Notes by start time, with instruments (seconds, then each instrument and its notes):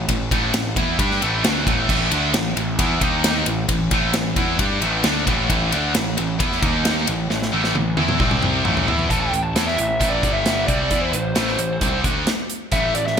0.08 picked electric bass A1, distorted electric guitar A2 E3, kick, ride
0.31 picked electric bass A1, distorted electric guitar A2 E3 A3, kick, ride
0.54 picked electric bass A1, distorted electric guitar A2 E3, snare, ride
0.76 picked electric bass E2, distorted electric guitar E3 B3 E4, kick, ride
0.99 picked electric bass G2, distorted electric guitar G3 D4 G4, kick, ride
1.11 snare
1.21 picked electric bass A1, distorted electric guitar A2 E3 A3, ride
1.44 picked electric bass D2, distorted electric guitar D3 A3 D4, snare, ride
1.66 picked electric bass A1, distorted electric guitar A2 E3 A3, kick, ride
1.89 picked electric bass A1, distorted electric guitar A2 E3 A3, kick, crash
2.11 picked electric bass D2, distorted electric guitar D3 A3 D4, ride
2.34 picked electric bass A1, distorted electric guitar A2 E3, snare, ride
2.55 picked electric bass A1, distorted electric guitar A2 E3, ride
2.79 picked electric bass E2, distorted electric guitar E3 B3 E4, kick, ride
3.01 picked electric bass D#2, distorted electric guitar D#3 A#3 D#4, kick, ride
3.24 snare, ride
3.46 picked electric bass A1, distorted electric guitar A2 E3, ride
3.69 picked electric bass A1, distorted electric guitar A2 E3, kick, ride
3.91 picked electric bass A1, distorted electric guitar A2 E3 A3, kick, ride
4.14 picked electric bass A1, distorted electric guitar A2 E3, snare, ride
4.36 picked electric bass E2, distorted electric guitar E3 B3 E4, kick, ride
4.59 picked electric bass G2, distorted electric guitar G3 D4 G4, kick, ride
4.81 picked electric bass A1, distorted electric guitar A2 E3 A3, ride
5.04 picked electric bass D2, distorted electric guitar D3 A3 D4, snare, ride
5.26 picked electric bass A1, distorted electric guitar A2 E3 A3, kick, ride
5.49 picked electric bass A1, distorted electric guitar A2 E3 A3, kick, ride
5.72 picked electric bass D2, distorted electric guitar D3 A3 D4, ride
5.95 picked electric bass A1, distorted electric guitar A2 E3, snare, ride
6.17 picked electric bass A1, distorted electric guitar A2 E3, ride
6.39 picked electric bass E2, distorted electric guitar E3 B3 E4, kick, ride
6.52 snare
6.62 picked electric bass D#2, distorted electric guitar D#3 A#3 D#4, kick, ride
6.85 snare, ride
7.07 picked electric bass A1, distorted electric guitar A2 E3, ride
7.30 picked electric bass A1, distorted electric guitar A2 E3, snare
7.42 snare
7.52 picked electric bass A1, distorted electric guitar A2 E3 A3
7.64 snare
7.75 picked electric bass A1, distorted electric guitar A2 E3, high tom
7.97 picked electric bass E2, distorted electric guitar E3 B3 E4, high tom
8.09 mid tom
8.20 picked electric bass C2, distorted electric guitar C3 G3 C4, kick
8.31 mid tom
8.42 mid tom
8.65 picked electric bass A1, distorted electric guitar A2 E3 A3, mid tom
8.77 floor tom
8.87 picked electric bass E2, distorted electric guitar E3 B3 E4, floor tom
8.99 floor tom
9.10 picked electric bass A1, distorted electric guitar A2 E3 A3, lead electric guitar A5, kick, closed hi-hat
9.21 lead electric guitar G5
9.32 picked electric bass A1, distorted electric guitar A2 E3, closed hi-hat
9.44 lead electric guitar A5
9.54 picked electric bass E2, distorted electric guitar E3 B3 E4, snare, closed hi-hat
9.67 lead electric guitar E5, snare
9.78 picked electric bass A1, distorted electric guitar A2 E3, closed hi-hat
9.88 lead electric guitar E5
10.00 picked electric bass A1, distorted electric guitar A2 E3 A3, kick, closed hi-hat
10.10 lead electric guitar D5
10.22 picked electric bass G1, distorted electric guitar G2 D3 G3, kick, closed hi-hat
10.33 lead electric guitar E5
10.46 snare, closed hi-hat
10.67 picked electric bass C2, distorted electric guitar C3 G3 C4, lead electric guitar D5, kick, closed hi-hat
10.91 picked electric bass E2, distorted electric guitar E3 B3 E4, kick, closed hi-hat
11.01 lead electric guitar C5
11.12 picked electric bass A1, distorted electric guitar A2 E3, lead electric guitar C5, closed hi-hat
11.35 picked electric bass A1, distorted electric guitar A2 E3 A3, snare, closed hi-hat
11.47 snare
11.59 picked electric bass A1, distorted electric guitar A2 E3, closed hi-hat
11.81 picked electric bass C2, distorted electric guitar C3 G3 C4, kick, closed hi-hat
12.04 picked electric bass D2, distorted electric guitar D3 A3 D4, kick, closed hi-hat
12.27 snare, closed hi-hat
12.50 closed hi-hat
12.72 picked electric bass A1, distorted electric guitar A2 E3 A3, lead electric guitar E5, kick, closed hi-hat
12.94 picked electric bass A1, distorted electric guitar A2 E3, lead electric guitar D5, closed hi-hat
13.07 lead electric guitar E5, snare